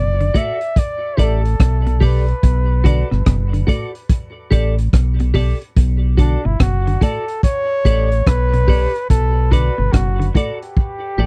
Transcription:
Already playing: F#1 D5
0.20 D3, closed hi-hat
0.34 A2 F#4 A4 D5 E5, kick, closed hi-hat
0.61 closed hi-hat
0.76 D5, kick, closed hi-hat
1.17 A1 G4 A4 D5, kick, closed hi-hat
1.45 closed hi-hat
1.60 B1, kick, cross-stick, closed hi-hat
1.86 B2, closed hi-hat
2.00 B2 G4 A4 D5, kick, open hi-hat
2.05 B4
2.28 closed hi-hat
2.43 B1, kick, closed hi-hat
2.84 D3 F#4 A4 D5, kick, closed hi-hat
3.11 G1 B2, cross-stick
3.26 F#1 B2, kick, cross-stick, closed hi-hat
3.53 D3, closed hi-hat
3.67 A2 F#4 A4 D5, kick, closed hi-hat
3.95 closed hi-hat
4.09 kick, closed hi-hat
4.51 A1 G4 A4 D5, kick, closed hi-hat
4.78 closed hi-hat
4.93 B1, kick, cross-stick, closed hi-hat
5.20 B2, closed hi-hat
5.34 B2 G4 A4 D5, kick, open hi-hat
5.62 closed hi-hat
5.77 B1, kick, closed hi-hat
6.17 D3 D4 F#4 A4 D5, kick, closed hi-hat
6.45 G1 B2 E4
6.60 F#1 B2 F#4, kick, cross-stick, closed hi-hat
6.87 D3, closed hi-hat
7.01 A2 F#4 A4 D5, kick, closed hi-hat
7.28 closed hi-hat
7.43 C#5, kick, closed hi-hat
7.85 A1 G4 A4 D5, kick, closed hi-hat
8.12 closed hi-hat
8.27 B1 B4, kick, cross-stick, closed hi-hat
8.53 B2, closed hi-hat
8.68 B2 G4 A4 D5, kick, open hi-hat
8.96 closed hi-hat
9.10 B1 A4, kick, closed hi-hat
9.51 D3 F#4 A4 B4 D5, kick, closed hi-hat
9.78 G1 B2
9.93 F#1 B2 F#4, kick, cross-stick, closed hi-hat
10.20 D3, closed hi-hat
10.34 A2 F#4 A4 D5, kick, closed hi-hat
10.62 G4, closed hi-hat
10.77 kick
11.18 A1 G4 A4 D5

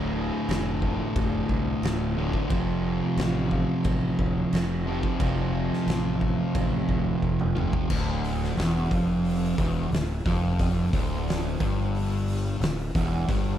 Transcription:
Already playing: D1 D2 A2 D3
0.48 F1, snare, crash
0.82 kick
1.15 F1, kick, crash
1.49 C2, kick
1.82 D1, snare, crash
2.16 D2 A2 D3
2.33 kick
2.49 F1 F2 C3 F3, kick, crash
3.17 A1, snare, crash
3.51 kick
3.84 A1, kick, crash
4.19 D1, kick
4.53 F1, snare, crash
4.86 F2 C3 F3
5.03 kick
5.19 F1 F2 C3 F3, kick, crash
5.73 snare
5.86 A1, snare, crash
6.21 kick
6.55 A1, kick, crash
6.89 D1, kick
7.22 F1, kick
7.40 mid tom
7.55 F2 C3 F3, mid tom
7.73 kick
7.90 D1 D2, kick, crash
8.24 open hi-hat
8.44 snare
8.57 E1 E2, snare, open hi-hat
8.91 F1 F2, kick, open hi-hat
9.25 open hi-hat
9.58 E1 E2, kick, open hi-hat
9.90 D1 D2, open hi-hat
9.95 snare
10.25 F1 F2, kick, open hi-hat
10.59 kick, open hi-hat
10.93 D1 D2, kick, open hi-hat
11.28 snare, open hi-hat
11.60 G1 G2, kick, open hi-hat
11.95 open hi-hat
12.28 open hi-hat
12.60 D1 D2, snare, open hi-hat
12.95 E1 E2, kick, open hi-hat
13.29 G1 G2, kick, open hi-hat

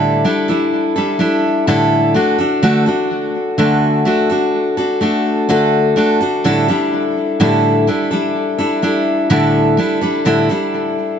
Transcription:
Already playing: A2 D3 G3 D4 E4 A4
0.24 G3 D4 E4 A4
0.48 G3 D4 E4 A4
0.96 G3 D4 E4 A4
1.19 G3 D4 E4 A4
1.67 A2 D3 G3 D4 E4 A4
2.14 A3 D4 F#4 A4
2.38 D4 F#4 A4
2.63 D3 A3 D4 F#4 A4
2.86 D4 F#4 A4
3.58 D3 A3 D4 F#4 A4
4.05 A3 D4 F#4 A4
4.30 D4 F#4 A4
4.77 D4 F#4 A4
5.01 A3 D4 F#4 A4
5.49 D3 A3 D4 F#4 A4
5.96 A3 D4 F#4 A4
6.21 D4 F#4 A4
6.44 A2 D3 G3 D4 E4 A4
6.68 G3 D4 E4 A4
7.40 A2 D3 G3 D4 E4 A4
7.87 G3 D4 E4 A4
8.11 G3 D4 E4 A4
8.58 G3 D4 E4 A4
8.82 G3 D4 E4 A4
9.30 A2 D3 G3 D4 E4 A4
9.77 G3 D4 E4 A4
10.01 G3 D4 E4 A4
10.25 A2 D3 G3 D4 E4 A4
10.49 G3 D4 E4 A4

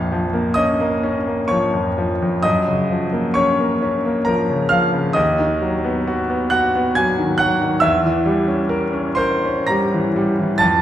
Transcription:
Already playing: A#1 F2 F5 F6
0.12 F3
0.33 A#3
0.54 C#4 D#5 D#6
0.80 A#3
1.03 C#4
1.27 A#3
1.48 F3 C#5 C#6
1.73 F2
1.98 F3
2.22 F2
2.43 F#2 D#5 D#6
2.68 C#3
2.90 F3
3.13 A#3
3.34 C#4 C#5 C#6
3.60 A#3
3.82 C#4
4.05 A#3
4.25 F3 A#4 A#5
4.50 C#3
4.69 F3 F5 F6
4.94 C#3
5.13 D#2 D#5 D#6
5.39 D#3
5.62 F#3
5.84 B3
6.07 F#4
6.30 B3
6.50 F#4 F#5 F#6
6.75 B3
6.95 F#3 G#5 G#6
7.18 D#3
7.38 F#3 F#5 F#6
7.62 D#3
7.80 E2 E5 E6
8.05 E3
8.26 G3
8.48 C#4
8.69 A#4
8.93 C#4
9.15 A#4 C5 C6
9.45 C#4
9.67 G3 A#5 A#6
9.94 E3
10.16 G3
10.39 E3
10.58 F2 A5 A6

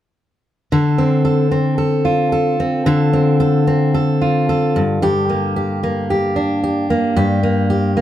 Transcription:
0.72 D3 A4
0.98 C4
1.25 A4
1.51 C4
1.78 A4
2.05 F4
2.32 A4
2.60 C4
2.86 D3 A4
3.13 C4
3.40 A4
3.67 C4
3.94 A4
4.21 F4
4.49 A4
4.76 G2
5.02 G2 G4
5.29 A#3
5.56 G4
5.83 A#3
6.10 G4
6.36 D4
6.64 G4
6.90 A#3
7.16 G2 G4
7.43 A#3
7.70 G4
7.97 A#3

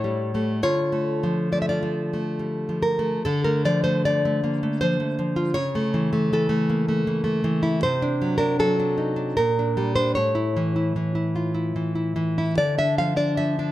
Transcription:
Already playing: A2 E4 C#5
0.04 G3
0.34 G3 A3
0.63 D3 F4 C#5
0.92 A3
1.23 F3
1.52 A3 D5
1.62 E5
1.69 F4 D5
1.83 F3
2.13 A3
2.39 G3
2.69 F3
2.83 A#4
2.99 A3
3.25 D3 A4
3.44 A3 A#4
3.65 F3 D5
3.84 A3 C5
4.05 F3 D5
4.25 A3
4.44 A#3
4.63 A3
4.81 F3 C5
5.00 A3
5.19 F3
5.36 F4
5.54 C#3 C#5
5.75 A3
5.94 E3
6.13 A3
6.33 E3 A4
6.49 A3
6.70 A#3
6.88 A3
7.07 E3
7.24 A3
7.44 E3
7.63 E4
7.83 C3 C5
8.02 D4
8.22 F#3
8.38 D4 A#4
8.59 F#3 A4
8.80 D4
8.98 D#4
9.16 D4
9.37 A#2 A#4
9.59 D4
9.77 G3
9.96 D4 C5
10.15 A2 C#5
10.35 E4
10.57 E3
10.76 E4
10.96 E3
11.15 E4
11.36 F4
11.54 E4
11.76 E3
11.95 E4
12.16 E3
12.38 E4
12.57 D3 D5
12.78 D4 E5
12.98 F3 F5
13.16 D4 D5
13.37 F3 E5
13.59 D4

